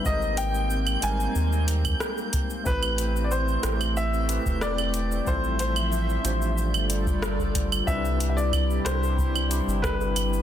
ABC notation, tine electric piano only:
X:1
M:4/4
L:1/8
Q:1/4=92
K:C
V:1 name="Tine electric piano"
[_A,C_EG_B]3 [G,A,CEB]4- [G,A,CEB] | [A,CEGB]3 [A,CEGc]2 [A,CEGB]3 | [G,CEFA]3 [A,DFGc]4- [A,DFGc] | [G,CDEB]3 [G,CDE]2 [G,CDEG]3 |]